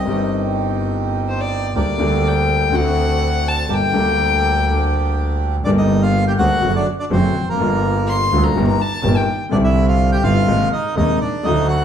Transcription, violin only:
0.00 0.32 D#5 medium
1.28 1.42 C5 medium
1.41 1.77 D5 medium
1.77 2.28 D5 medium
2.27 2.76 G5 medium
2.75 3.49 F#5 loud
3.48 3.75 A5 loud
3.73 5.18 G5 loud
8.07 8.45 C6 medium
8.43 8.67 A#5 medium
8.67 8.82 A#5 medium
8.81 9.18 A5 loud
9.17 9.40 G5 medium

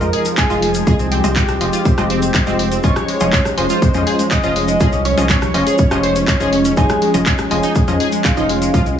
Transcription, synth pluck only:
0.01 0.07 G#3 medium
0.01 0.07 F4 medium
0.01 0.07 D#5 medium
0.50 0.84 G#3 medium
0.50 0.84 F4 medium
0.50 0.84 D#5 medium
0.87 1.21 G#3 medium
0.87 1.21 F4 medium
0.87 1.21 D#5 medium
1.24 1.58 G#3 medium
1.24 1.58 F4 medium
1.24 1.58 D#5 medium
1.61 1.70 G#3 medium
1.61 1.71 F4 medium
1.61 1.70 D#5 medium
1.98 2.04 G#3 medium
1.98 2.04 F4 medium
1.98 2.04 D#5 loud
2.47 2.81 G#3 medium
2.47 2.81 F4 medium
2.47 2.81 D#5 medium
2.84 3.18 F3 medium
2.84 3.18 C#4 medium
2.84 3.18 F4 medium
2.84 3.18 D#5 medium
3.21 3.55 F3 medium
3.21 3.55 C#4 medium
3.21 3.55 F4 medium
3.21 3.55 D#5 medium
3.58 3.67 F3 medium
3.58 3.67 C#4 medium
3.58 3.67 F4 medium
3.58 3.67 D#5 medium
3.94 4.00 F3 medium
3.94 4.00 C#4 medium
3.94 4.01 F4 medium
3.94 4.01 D#5 medium
4.44 4.78 F3 medium
4.44 4.78 C#4 medium
4.44 4.78 F4 medium
4.44 4.78 D#5 medium
4.81 5.14 F3 medium
4.81 5.14 C#4 medium
4.81 5.14 F4 medium
4.81 5.14 D#5 medium
5.17 5.51 F3 medium
5.17 5.51 C#4 medium
5.17 5.51 F4 medium
5.17 5.51 D#5 medium
5.54 5.64 F3 medium
5.54 5.64 C#4 medium
5.54 5.64 F4 medium
5.54 5.64 D#5 medium
5.91 5.97 F3 medium
5.91 5.97 C#4 medium
5.91 5.97 F4 medium
5.91 5.97 D#5 medium
6.40 6.74 F3 medium
6.40 6.74 C#4 medium
6.40 6.74 F4 medium
6.40 6.74 D#5 medium
6.77 7.11 F3 medium
6.77 7.11 C#4 medium
6.77 7.11 F4 medium
6.77 7.11 D#5 medium
7.14 7.48 F3 medium
7.14 7.48 C#4 medium
7.14 7.48 F4 medium
7.14 7.48 D#5 medium
7.51 7.61 F3 medium
7.51 7.61 C#4 medium
7.51 7.61 F4 medium
7.51 7.61 D#5 medium
7.88 7.94 F3 medium
7.88 7.94 C#4 medium
7.88 7.94 F4 medium
7.88 7.94 D#5 loud
8.37 8.71 F3 medium
8.37 8.71 C#4 medium
8.37 8.71 F4 medium
8.37 8.71 D#5 medium
8.74 8.99 F3 medium
8.74 8.99 C#4 medium
8.74 8.99 F4 medium
8.74 8.99 D#5 medium

